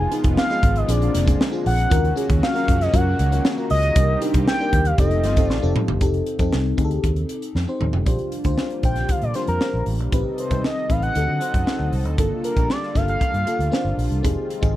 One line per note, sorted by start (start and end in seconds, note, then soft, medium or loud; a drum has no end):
0.00 0.88 D#3 medium
0.00 1.89 F3 medium
0.00 1.89 G#3 medium
0.00 0.88 B3 medium
0.00 1.88 F4 medium
0.00 0.13 G#5 loud
0.11 0.36 B3 medium
0.11 0.36 D#4 medium
0.11 0.36 F4 medium
0.11 0.36 G#4 medium
0.11 closed hi-hat medium
0.24 0.34 F1 loud
0.24 kick medium
0.24 closed hi-hat soft
0.37 0.78 F5 loud
0.37 snare loud
0.49 0.74 B3 medium
0.49 0.74 D#4 medium
0.49 0.74 F4 medium
0.49 0.75 G#4 medium
0.49 snare soft
0.49 closed hi-hat soft
0.63 0.82 G#1 loud
0.63 kick medium
0.63 closed hi-hat medium
0.76 0.92 D#5 loud
0.76 closed hi-hat soft
0.88 1.08 A#1 loud
0.88 1.90 D3 medium
0.88 1.90 A#3 medium
0.88 1.12 C4 medium
0.88 1.13 D4 medium
0.88 1.13 F4 medium
0.88 1.13 G#4 medium
0.88 1.41 D5 medium
0.88 closed hi-hat loud
1.02 closed hi-hat soft
1.15 1.34 F1 loud
1.15 snare soft
1.15 closed hi-hat medium
1.26 1.43 C4 medium
1.26 1.43 D4 medium
1.26 1.43 F4 medium
1.26 1.43 G#4 medium
1.26 kick medium
1.26 closed hi-hat medium
1.41 snare loud
1.51 1.76 C4 medium
1.51 1.76 D4 medium
1.51 1.76 F4 medium
1.51 1.77 G#4 medium
1.66 1.85 A#1 medium
1.66 2.14 F#5 loud
1.66 open hi-hat medium
1.79 closed hi-hat medium
1.90 2.10 D#2 loud
1.90 5.98 D#3 medium
1.90 3.94 F#3 medium
1.90 4.96 A#3 medium
1.90 2.06 C#4 medium
1.90 3.95 C#4 medium
1.90 2.07 F4 medium
1.90 2.07 F#4 medium
1.90 3.95 F#4 medium
1.90 2.07 A#4 medium
1.90 kick loud
1.90 closed hi-hat loud
2.05 closed hi-hat soft
2.16 2.40 C#4 medium
2.16 2.40 F4 medium
2.16 2.40 F#4 medium
2.16 2.41 G#4 medium
2.16 closed hi-hat medium
2.29 2.39 D#2 loud
2.29 kick medium
2.29 closed hi-hat soft
2.43 2.83 F5 loud
2.43 snare loud
2.54 2.78 C#4 medium
2.54 2.79 F4 medium
2.54 2.79 F#4 medium
2.54 2.79 A#4 medium
2.54 snare soft
2.54 closed hi-hat soft
2.68 2.87 F#2 medium
2.68 kick medium
2.68 closed hi-hat medium
2.81 2.96 D#5 loud
2.81 snare soft
2.81 closed hi-hat soft
2.92 3.13 F#2 loud
2.92 3.17 C#4 medium
2.92 3.17 F4 medium
2.92 3.17 F#4 medium
2.92 3.17 A#4 medium
2.92 3.45 F#5 medium
2.92 kick medium
2.92 closed hi-hat medium
3.19 3.38 C#2 loud
3.19 closed hi-hat medium
3.32 3.48 C#4 medium
3.32 3.48 F4 medium
3.32 3.48 F#4 medium
3.32 3.48 A#4 medium
3.32 closed hi-hat medium
3.45 snare loud
3.57 3.81 C#4 medium
3.57 3.82 F4 medium
3.57 3.82 F#4 medium
3.57 3.82 A#4 medium
3.70 3.90 C#2 medium
3.70 4.18 D#5 loud
3.70 open hi-hat medium
3.83 closed hi-hat soft
3.95 4.15 C2 medium
3.95 4.98 G3 medium
3.95 4.98 C4 medium
3.95 4.12 D4 medium
3.95 4.12 D#4 medium
3.95 4.98 G4 medium
3.95 4.12 G4 medium
3.95 4.12 A#4 medium
3.95 kick loud
3.95 closed hi-hat loud
4.21 4.45 D4 medium
4.21 4.45 D#4 medium
4.21 4.46 G4 medium
4.21 4.46 A#4 medium
4.21 closed hi-hat medium
4.34 4.44 C2 loud
4.34 kick medium
4.34 closed hi-hat soft
4.47 4.88 G5 loud
4.47 snare loud
4.60 4.84 D4 medium
4.60 4.84 D#4 medium
4.60 4.84 G4 medium
4.60 4.85 A#4 medium
4.73 4.92 D#2 medium
4.73 kick medium
4.73 closed hi-hat medium
4.85 4.99 F5 loud
4.85 closed hi-hat soft
4.98 5.25 F1 loud
4.98 6.00 F3 medium
4.98 6.00 A3 medium
4.98 6.00 C4 medium
4.98 5.23 C4 medium
4.98 5.23 D#4 medium
4.98 6.00 F4 medium
4.98 5.23 G4 medium
4.98 5.23 A4 medium
4.98 5.50 D#5 medium
4.98 kick medium
4.98 closed hi-hat medium
5.11 closed hi-hat soft
5.24 5.50 G1 loud
5.24 snare soft
5.24 closed hi-hat medium
5.37 5.53 C4 medium
5.37 5.53 D#4 medium
5.37 5.53 G4 medium
5.37 5.54 A4 medium
5.37 kick medium
5.37 closed hi-hat medium
5.50 5.59 A1 medium
5.50 5.72 D5 medium
5.50 snare medium
5.62 5.73 F1 medium
5.62 5.86 C4 medium
5.62 5.87 D#4 medium
5.62 5.87 G4 medium
5.62 5.87 A4 medium
5.76 mid tom medium
5.88 5.98 G1 medium
5.88 floor tom loud
6.01 6.20 F1 medium
6.01 6.25 C4 medium
6.01 6.25 D#4 medium
6.01 6.25 G4 medium
6.01 6.26 A4 medium
6.01 kick medium
6.01 closed hi-hat medium
6.14 closed hi-hat soft
6.26 closed hi-hat medium
6.39 6.49 F2 medium
6.39 6.63 C4 medium
6.39 6.63 D#4 medium
6.39 6.64 G4 medium
6.39 6.64 A4 medium
6.39 kick medium
6.39 closed hi-hat soft
6.53 6.72 C2 medium
6.53 snare loud
6.77 6.97 D2 medium
6.77 7.34 C4 medium
6.77 7.34 D#4 medium
6.77 7.34 G4 medium
6.77 6.85 G#4 medium
6.77 kick medium
6.77 closed hi-hat medium
6.85 7.37 A4 loud
6.91 closed hi-hat soft
7.04 7.23 D#2 medium
7.04 kick medium
7.04 closed hi-hat medium
7.16 closed hi-hat soft
7.29 closed hi-hat medium
7.42 closed hi-hat medium
7.55 7.65 F2 medium
7.55 snare medium
7.68 7.92 C4 medium
7.68 7.92 D#4 medium
7.68 7.92 G4 medium
7.68 7.92 C5 medium
7.81 7.91 D#2 medium
7.81 mid tom medium
7.93 8.04 F1 medium
7.93 floor tom medium
8.06 8.16 A#1 medium
8.06 10.10 D3 medium
8.06 10.11 F3 medium
8.06 11.12 G3 medium
8.06 10.10 A#3 medium
8.06 8.30 D4 medium
8.06 8.30 F4 medium
8.06 10.10 F4 medium
8.06 8.30 G4 medium
8.06 8.31 C5 medium
8.06 kick medium
8.06 closed hi-hat medium
8.18 closed hi-hat soft
8.32 closed hi-hat medium
8.44 8.55 D2 medium
8.44 8.69 D4 medium
8.44 8.69 F4 medium
8.44 8.69 G4 medium
8.44 8.69 C5 medium
8.44 kick medium
8.44 closed hi-hat soft
8.58 snare loud
8.70 closed hi-hat soft
8.83 9.03 A#1 medium
8.83 9.15 D4 medium
8.83 9.16 F4 medium
8.83 9.16 G4 medium
8.83 9.16 C5 medium
8.83 9.12 G5 medium
8.83 kick medium
8.83 closed hi-hat medium
8.96 snare soft
8.96 closed hi-hat soft
9.09 9.25 F5 medium
9.09 muted fingered electric bass stroke soft
9.09 kick medium
9.09 closed hi-hat medium
9.22 9.32 A#2 medium
9.22 9.35 D5 loud
9.22 closed hi-hat soft
9.34 9.51 D4 medium
9.34 9.51 F4 medium
9.34 9.52 G4 medium
9.34 9.41 C5 medium
9.34 9.52 C5 medium
9.34 snare soft
9.34 closed hi-hat medium
9.47 9.58 F2 medium
9.47 9.84 A#4 medium
9.47 closed hi-hat medium
9.61 9.93 D4 medium
9.61 9.93 F4 medium
9.61 9.93 G4 medium
9.61 9.94 C5 medium
9.61 snare loud
9.74 9.83 A#1 medium
9.86 10.00 A1 medium
9.86 open hi-hat medium
9.99 10.09 A#1 medium
9.99 closed hi-hat soft
10.12 10.22 A1 medium
10.12 11.15 C3 medium
10.12 11.14 D#3 medium
10.12 10.36 C4 medium
10.12 10.37 D#4 medium
10.12 10.37 G4 medium
10.12 14.20 A4 medium
10.12 10.37 B4 medium
10.12 12.16 D#5 medium
10.12 kick loud
10.12 closed hi-hat medium
10.38 10.63 C5 medium
10.38 closed hi-hat medium
10.51 10.60 C2 medium
10.51 10.75 C4 medium
10.51 10.75 D#4 medium
10.51 10.75 G4 medium
10.51 10.76 B4 medium
10.51 kick medium
10.51 closed hi-hat soft
10.64 10.92 D#5 loud
10.64 snare loud
10.89 11.09 A1 medium
10.89 11.14 C4 medium
10.89 11.15 D#4 medium
10.89 11.16 G4 medium
10.89 11.16 B4 medium
10.89 11.03 F5 loud
10.89 kick medium
10.89 closed hi-hat medium
11.02 11.89 F#5 loud
11.02 closed hi-hat soft
11.15 11.25 D2 loud
11.15 14.21 D3 medium
11.15 12.18 F#3 medium
11.15 11.36 C4 medium
11.15 12.17 C4 medium
11.15 11.36 D#4 medium
11.15 11.36 F#4 medium
11.15 11.37 A4 medium
11.15 closed hi-hat medium
11.28 11.38 D3 medium
11.40 11.57 C4 medium
11.40 11.57 D#4 medium
11.40 11.57 F#4 medium
11.40 11.57 C5 medium
11.40 closed hi-hat medium
11.54 11.64 F#2 medium
11.54 kick medium
11.54 closed hi-hat medium
11.66 11.98 C4 medium
11.66 11.99 D#4 medium
11.66 11.99 F#4 medium
11.66 11.99 C5 medium
11.66 snare loud
11.80 11.89 D2 medium
11.92 12.05 C2 medium
11.92 open hi-hat medium
12.05 12.15 D2 medium
12.05 closed hi-hat soft
12.18 12.28 G1 medium
12.18 14.22 G3 medium
12.18 12.42 A#3 medium
12.18 14.22 A#3 medium
12.18 12.42 D4 medium
12.18 12.42 F4 medium
12.18 14.76 F4 medium
12.18 12.43 A4 medium
12.18 kick loud
12.18 closed hi-hat medium
12.44 12.72 A#4 medium
12.44 closed hi-hat medium
12.56 12.66 A#1 medium
12.56 12.80 A#3 medium
12.56 12.81 D4 medium
12.56 12.81 F4 medium
12.56 12.81 G4 medium
12.56 kick medium
12.56 closed hi-hat soft
12.70 12.98 D5 loud
12.70 snare loud
12.83 snare soft
12.95 13.15 G1 medium
12.95 13.27 A#3 medium
12.95 13.27 D4 medium
12.95 13.27 F4 medium
12.95 13.28 A4 medium
12.95 13.09 F5 loud
12.95 kick medium
12.95 snare soft
12.95 closed hi-hat medium
13.08 13.95 F5 loud
13.08 closed hi-hat soft
13.21 kick medium
13.21 closed hi-hat medium
13.34 13.43 G2 medium
13.34 closed hi-hat soft
13.46 13.62 A#3 medium
13.46 13.63 D4 medium
13.46 13.63 F4 medium
13.46 13.63 A4 medium
13.46 closed hi-hat medium
13.59 13.69 D2 medium
13.59 closed hi-hat soft
13.71 14.04 A#3 medium
13.71 14.04 D4 medium
13.71 14.04 F4 medium
13.71 14.04 C5 medium
13.71 snare loud
13.84 13.94 G1 medium
13.97 14.07 A#1 medium
13.97 open hi-hat medium
14.11 14.20 C2 medium
14.11 closed hi-hat soft
14.23 14.34 F1 loud
14.23 14.76 D#3 medium
14.23 14.76 F3 medium
14.23 14.76 G#3 medium
14.23 14.47 C4 medium
14.23 14.76 C4 medium
14.23 14.48 D#4 medium
14.23 14.48 G4 medium
14.23 14.48 G#4 medium
14.23 kick medium
14.23 closed hi-hat medium
14.50 closed hi-hat medium
14.61 14.72 G#1 medium
14.61 14.76 C4 medium
14.61 14.76 D#4 medium
14.61 14.76 G4 medium
14.61 14.76 G#4 loud
14.61 kick medium
14.61 closed hi-hat soft